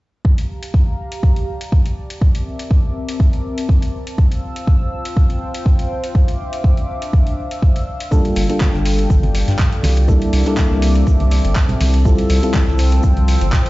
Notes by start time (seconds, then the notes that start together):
0.25 G4 F5 A5 A#5, kick
0.38 closed hi-hat
0.63 closed hi-hat
0.74 kick
0.89 D5
1.12 closed hi-hat
1.23 kick
1.36 closed hi-hat
1.61 closed hi-hat
1.72 kick
1.86 closed hi-hat
2.10 closed hi-hat
2.21 C4 A#4 E5 D6, kick
2.35 closed hi-hat
2.59 closed hi-hat
2.71 kick
3.09 closed hi-hat
3.20 kick
3.33 closed hi-hat
3.58 closed hi-hat
3.69 kick
3.82 closed hi-hat
4.07 closed hi-hat
4.18 C5 F5 E6, kick
4.25 F4
4.32 closed hi-hat
4.56 closed hi-hat
4.67 G5, kick
4.91 C5
5.05 closed hi-hat
5.17 kick
5.30 closed hi-hat
5.54 closed hi-hat
5.66 kick
5.79 closed hi-hat
6.04 closed hi-hat
6.15 D4 E5 D6, kick
6.28 closed hi-hat
6.53 closed hi-hat
6.64 kick
6.77 closed hi-hat
7.02 E6, closed hi-hat
7.13 kick
7.27 closed hi-hat
7.51 closed hi-hat
7.62 kick
7.76 closed hi-hat
8.00 closed hi-hat
8.11 G3 A#3 D4 F4 G4 A4 G5, kick, shaker
8.25 closed hi-hat
8.36 G1, open hi-hat, shaker
8.49 G3 A#3 D4 F4 A4 D5, closed hi-hat
8.60 kick, snare, clap, high conga, shaker
8.74 G1, snare
8.86 snare, open hi-hat, shaker
8.99 closed hi-hat
9.10 G1, kick, shaker
9.23 closed hi-hat, high conga
9.35 open hi-hat, shaker
9.48 G2, snare, closed hi-hat
9.59 kick, snare, clap, low conga, shaker
9.72 closed hi-hat
9.83 C2, snare, open hi-hat, high conga, shaker
9.97 closed hi-hat
10.08 G3 A#3 C4 D4 E4 A4 E5 A5 D6, kick, shaker
10.22 closed hi-hat
10.33 C2, open hi-hat, shaker
10.45 G3 A#3 D4 E4 A4, snare, closed hi-hat
10.57 kick, snare, clap, high conga, shaker
10.71 C2, snare
10.82 open hi-hat, shaker
10.96 closed hi-hat
11.07 C2, kick, shaker
11.20 closed hi-hat, high conga
11.31 open hi-hat, shaker
11.45 G1, closed hi-hat
11.55 kick, snare, clap, shaker
11.69 closed hi-hat, low conga
11.80 C2, snare, open hi-hat, high conga
11.94 closed hi-hat
12.05 F3 G3 C4 E4 F4 A4 C5 E6, kick, shaker
12.18 closed hi-hat
12.30 C2 G5, open hi-hat, shaker
12.40 G3 C4 E4 F4 A4 C5, closed hi-hat
12.54 kick, snare, clap, high conga, shaker
12.68 C2, snare
12.78 snare, open hi-hat, shaker
12.92 closed hi-hat
13.03 C2, kick, shaker
13.17 closed hi-hat, high conga
13.28 open hi-hat, shaker
13.41 G1, closed hi-hat
13.52 kick, snare, clap, low conga, shaker
13.66 closed hi-hat